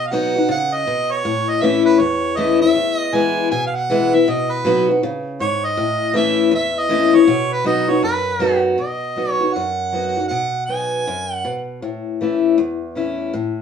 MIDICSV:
0, 0, Header, 1, 3, 480
1, 0, Start_track
1, 0, Tempo, 377834
1, 1582, Time_signature, 4, 2, 24, 8
1, 17302, End_track
2, 0, Start_track
2, 0, Title_t, "Harmonica"
2, 0, Program_c, 0, 22
2, 87, Note_on_c, 0, 77, 66
2, 148, Note_on_c, 0, 78, 95
2, 167, Note_off_c, 0, 77, 0
2, 625, Note_off_c, 0, 78, 0
2, 642, Note_on_c, 0, 78, 95
2, 941, Note_on_c, 0, 75, 100
2, 960, Note_off_c, 0, 78, 0
2, 1416, Note_on_c, 0, 73, 99
2, 1435, Note_off_c, 0, 75, 0
2, 1901, Note_on_c, 0, 75, 90
2, 1920, Note_off_c, 0, 73, 0
2, 2057, Note_on_c, 0, 76, 91
2, 2076, Note_off_c, 0, 75, 0
2, 2344, Note_off_c, 0, 76, 0
2, 2352, Note_on_c, 0, 71, 93
2, 2531, Note_on_c, 0, 73, 92
2, 2550, Note_off_c, 0, 71, 0
2, 3006, Note_on_c, 0, 75, 93
2, 3025, Note_off_c, 0, 73, 0
2, 3315, Note_off_c, 0, 75, 0
2, 3322, Note_on_c, 0, 76, 108
2, 3767, Note_off_c, 0, 76, 0
2, 3767, Note_on_c, 0, 75, 108
2, 3990, Note_on_c, 0, 80, 99
2, 4009, Note_off_c, 0, 75, 0
2, 4452, Note_off_c, 0, 80, 0
2, 4460, Note_on_c, 0, 80, 103
2, 4637, Note_off_c, 0, 80, 0
2, 4655, Note_on_c, 0, 77, 80
2, 4774, Note_on_c, 0, 78, 107
2, 4793, Note_off_c, 0, 77, 0
2, 5263, Note_on_c, 0, 76, 97
2, 5282, Note_off_c, 0, 78, 0
2, 5459, Note_on_c, 0, 75, 98
2, 5478, Note_off_c, 0, 76, 0
2, 5741, Note_on_c, 0, 71, 86
2, 5760, Note_off_c, 0, 75, 0
2, 6210, Note_off_c, 0, 71, 0
2, 6869, Note_on_c, 0, 73, 98
2, 7179, Note_on_c, 0, 75, 109
2, 7198, Note_off_c, 0, 73, 0
2, 7821, Note_off_c, 0, 75, 0
2, 7828, Note_on_c, 0, 76, 109
2, 8266, Note_off_c, 0, 76, 0
2, 8318, Note_on_c, 0, 76, 106
2, 8625, Note_on_c, 0, 75, 114
2, 8644, Note_off_c, 0, 76, 0
2, 9083, Note_on_c, 0, 73, 108
2, 9102, Note_off_c, 0, 75, 0
2, 9563, Note_on_c, 0, 71, 93
2, 9582, Note_off_c, 0, 73, 0
2, 9726, Note_off_c, 0, 71, 0
2, 9734, Note_on_c, 0, 75, 97
2, 10033, Note_on_c, 0, 73, 87
2, 10052, Note_off_c, 0, 75, 0
2, 10200, Note_off_c, 0, 73, 0
2, 10208, Note_on_c, 0, 71, 81
2, 10944, Note_off_c, 0, 71, 0
2, 11158, Note_on_c, 0, 75, 70
2, 11831, Note_off_c, 0, 75, 0
2, 11831, Note_on_c, 0, 73, 70
2, 12111, Note_on_c, 0, 78, 82
2, 12130, Note_off_c, 0, 73, 0
2, 13048, Note_off_c, 0, 78, 0
2, 13056, Note_on_c, 0, 78, 85
2, 13521, Note_off_c, 0, 78, 0
2, 13543, Note_on_c, 0, 80, 87
2, 14419, Note_off_c, 0, 80, 0
2, 14419, Note_on_c, 0, 78, 87
2, 14778, Note_off_c, 0, 78, 0
2, 17302, End_track
3, 0, Start_track
3, 0, Title_t, "Steel-string acoustic guitar"
3, 0, Program_c, 1, 25
3, 0, Note_on_c, 1, 47, 86
3, 145, Note_on_c, 1, 54, 86
3, 157, Note_on_c, 1, 59, 81
3, 163, Note_on_c, 1, 63, 93
3, 174, Note_on_c, 1, 66, 100
3, 438, Note_off_c, 1, 54, 0
3, 440, Note_off_c, 1, 66, 0
3, 444, Note_off_c, 1, 59, 0
3, 447, Note_off_c, 1, 63, 0
3, 455, Note_on_c, 1, 66, 59
3, 485, Note_on_c, 1, 63, 56
3, 592, Note_off_c, 1, 47, 0
3, 618, Note_on_c, 1, 49, 95
3, 619, Note_off_c, 1, 66, 0
3, 634, Note_off_c, 1, 63, 0
3, 1082, Note_off_c, 1, 49, 0
3, 1109, Note_on_c, 1, 47, 87
3, 1567, Note_off_c, 1, 47, 0
3, 1586, Note_on_c, 1, 45, 87
3, 2055, Note_on_c, 1, 52, 84
3, 2068, Note_on_c, 1, 57, 85
3, 2076, Note_on_c, 1, 61, 82
3, 2080, Note_on_c, 1, 64, 87
3, 2508, Note_off_c, 1, 45, 0
3, 2520, Note_off_c, 1, 52, 0
3, 2526, Note_off_c, 1, 57, 0
3, 2530, Note_off_c, 1, 61, 0
3, 2532, Note_off_c, 1, 64, 0
3, 2535, Note_on_c, 1, 40, 89
3, 3012, Note_on_c, 1, 52, 91
3, 3018, Note_on_c, 1, 57, 83
3, 3030, Note_on_c, 1, 61, 79
3, 3037, Note_on_c, 1, 64, 94
3, 3310, Note_off_c, 1, 52, 0
3, 3312, Note_off_c, 1, 57, 0
3, 3312, Note_off_c, 1, 64, 0
3, 3318, Note_off_c, 1, 61, 0
3, 3327, Note_on_c, 1, 64, 61
3, 3356, Note_on_c, 1, 61, 46
3, 3461, Note_off_c, 1, 40, 0
3, 3492, Note_off_c, 1, 64, 0
3, 3498, Note_on_c, 1, 40, 83
3, 3507, Note_off_c, 1, 61, 0
3, 3973, Note_on_c, 1, 52, 85
3, 3985, Note_on_c, 1, 56, 82
3, 3994, Note_on_c, 1, 59, 88
3, 4004, Note_on_c, 1, 64, 96
3, 4422, Note_off_c, 1, 40, 0
3, 4437, Note_off_c, 1, 52, 0
3, 4443, Note_off_c, 1, 56, 0
3, 4447, Note_off_c, 1, 59, 0
3, 4453, Note_off_c, 1, 64, 0
3, 4468, Note_on_c, 1, 47, 92
3, 4950, Note_on_c, 1, 52, 75
3, 4956, Note_on_c, 1, 56, 86
3, 4965, Note_on_c, 1, 59, 90
3, 4973, Note_on_c, 1, 64, 95
3, 5237, Note_off_c, 1, 52, 0
3, 5238, Note_off_c, 1, 64, 0
3, 5240, Note_off_c, 1, 56, 0
3, 5244, Note_off_c, 1, 59, 0
3, 5253, Note_on_c, 1, 64, 58
3, 5281, Note_on_c, 1, 59, 50
3, 5386, Note_off_c, 1, 47, 0
3, 5414, Note_off_c, 1, 64, 0
3, 5428, Note_off_c, 1, 59, 0
3, 5434, Note_on_c, 1, 47, 90
3, 5903, Note_on_c, 1, 54, 89
3, 5915, Note_on_c, 1, 59, 94
3, 5923, Note_on_c, 1, 63, 95
3, 5928, Note_on_c, 1, 66, 100
3, 6192, Note_off_c, 1, 54, 0
3, 6199, Note_off_c, 1, 59, 0
3, 6199, Note_off_c, 1, 66, 0
3, 6203, Note_off_c, 1, 63, 0
3, 6214, Note_on_c, 1, 66, 64
3, 6238, Note_on_c, 1, 63, 49
3, 6348, Note_off_c, 1, 47, 0
3, 6373, Note_off_c, 1, 66, 0
3, 6385, Note_off_c, 1, 63, 0
3, 6393, Note_on_c, 1, 49, 88
3, 6845, Note_off_c, 1, 49, 0
3, 6865, Note_on_c, 1, 44, 84
3, 7321, Note_off_c, 1, 44, 0
3, 7334, Note_on_c, 1, 45, 93
3, 7794, Note_on_c, 1, 52, 91
3, 7810, Note_on_c, 1, 57, 86
3, 7815, Note_on_c, 1, 61, 90
3, 7825, Note_on_c, 1, 64, 94
3, 8256, Note_off_c, 1, 45, 0
3, 8265, Note_off_c, 1, 52, 0
3, 8272, Note_off_c, 1, 57, 0
3, 8275, Note_off_c, 1, 61, 0
3, 8276, Note_on_c, 1, 40, 99
3, 8280, Note_off_c, 1, 64, 0
3, 8756, Note_on_c, 1, 52, 86
3, 8762, Note_on_c, 1, 57, 88
3, 8773, Note_on_c, 1, 61, 90
3, 8777, Note_on_c, 1, 64, 99
3, 9041, Note_off_c, 1, 64, 0
3, 9056, Note_on_c, 1, 64, 63
3, 9057, Note_off_c, 1, 52, 0
3, 9060, Note_off_c, 1, 57, 0
3, 9065, Note_off_c, 1, 61, 0
3, 9085, Note_on_c, 1, 61, 48
3, 9207, Note_off_c, 1, 40, 0
3, 9232, Note_off_c, 1, 64, 0
3, 9241, Note_on_c, 1, 47, 87
3, 9247, Note_off_c, 1, 61, 0
3, 9711, Note_on_c, 1, 54, 86
3, 9719, Note_on_c, 1, 59, 85
3, 9732, Note_on_c, 1, 63, 92
3, 9738, Note_on_c, 1, 66, 92
3, 10002, Note_off_c, 1, 66, 0
3, 10014, Note_off_c, 1, 54, 0
3, 10018, Note_off_c, 1, 59, 0
3, 10018, Note_on_c, 1, 66, 67
3, 10025, Note_off_c, 1, 63, 0
3, 10046, Note_on_c, 1, 63, 56
3, 10170, Note_off_c, 1, 47, 0
3, 10193, Note_off_c, 1, 66, 0
3, 10195, Note_on_c, 1, 42, 92
3, 10207, Note_off_c, 1, 63, 0
3, 10662, Note_on_c, 1, 54, 80
3, 10671, Note_on_c, 1, 59, 84
3, 10685, Note_on_c, 1, 63, 92
3, 10691, Note_on_c, 1, 66, 93
3, 11128, Note_off_c, 1, 42, 0
3, 11138, Note_off_c, 1, 54, 0
3, 11143, Note_off_c, 1, 59, 0
3, 11150, Note_off_c, 1, 63, 0
3, 11152, Note_on_c, 1, 47, 68
3, 11153, Note_off_c, 1, 66, 0
3, 11638, Note_on_c, 1, 54, 49
3, 11652, Note_on_c, 1, 59, 50
3, 11659, Note_on_c, 1, 63, 51
3, 11663, Note_on_c, 1, 66, 51
3, 11933, Note_off_c, 1, 66, 0
3, 11939, Note_off_c, 1, 54, 0
3, 11946, Note_off_c, 1, 59, 0
3, 11948, Note_on_c, 1, 66, 51
3, 11949, Note_off_c, 1, 63, 0
3, 11978, Note_on_c, 1, 63, 41
3, 12087, Note_off_c, 1, 47, 0
3, 12119, Note_off_c, 1, 66, 0
3, 12134, Note_off_c, 1, 63, 0
3, 12142, Note_on_c, 1, 42, 78
3, 12609, Note_on_c, 1, 54, 49
3, 12619, Note_on_c, 1, 59, 50
3, 12634, Note_on_c, 1, 63, 51
3, 12638, Note_on_c, 1, 66, 59
3, 12905, Note_off_c, 1, 54, 0
3, 12910, Note_off_c, 1, 59, 0
3, 12910, Note_off_c, 1, 66, 0
3, 12918, Note_off_c, 1, 63, 0
3, 12925, Note_on_c, 1, 66, 47
3, 12956, Note_on_c, 1, 63, 37
3, 13064, Note_off_c, 1, 42, 0
3, 13089, Note_off_c, 1, 66, 0
3, 13094, Note_on_c, 1, 47, 76
3, 13104, Note_off_c, 1, 63, 0
3, 13572, Note_on_c, 1, 54, 45
3, 13582, Note_on_c, 1, 59, 52
3, 13592, Note_on_c, 1, 63, 61
3, 13595, Note_on_c, 1, 66, 59
3, 14022, Note_off_c, 1, 47, 0
3, 14037, Note_off_c, 1, 54, 0
3, 14042, Note_off_c, 1, 59, 0
3, 14047, Note_off_c, 1, 63, 0
3, 14049, Note_off_c, 1, 66, 0
3, 14068, Note_on_c, 1, 42, 74
3, 14526, Note_off_c, 1, 42, 0
3, 14542, Note_on_c, 1, 47, 74
3, 15004, Note_off_c, 1, 47, 0
3, 15021, Note_on_c, 1, 45, 77
3, 15509, Note_on_c, 1, 52, 52
3, 15519, Note_on_c, 1, 57, 59
3, 15532, Note_on_c, 1, 61, 54
3, 15533, Note_on_c, 1, 64, 57
3, 15948, Note_off_c, 1, 45, 0
3, 15968, Note_off_c, 1, 52, 0
3, 15973, Note_off_c, 1, 57, 0
3, 15979, Note_on_c, 1, 40, 82
3, 15980, Note_off_c, 1, 61, 0
3, 15980, Note_off_c, 1, 64, 0
3, 16455, Note_on_c, 1, 52, 49
3, 16464, Note_on_c, 1, 57, 53
3, 16469, Note_on_c, 1, 61, 60
3, 16478, Note_on_c, 1, 64, 60
3, 16908, Note_off_c, 1, 40, 0
3, 16923, Note_off_c, 1, 52, 0
3, 16927, Note_off_c, 1, 57, 0
3, 16930, Note_off_c, 1, 61, 0
3, 16934, Note_off_c, 1, 64, 0
3, 16941, Note_on_c, 1, 45, 72
3, 17302, Note_off_c, 1, 45, 0
3, 17302, End_track
0, 0, End_of_file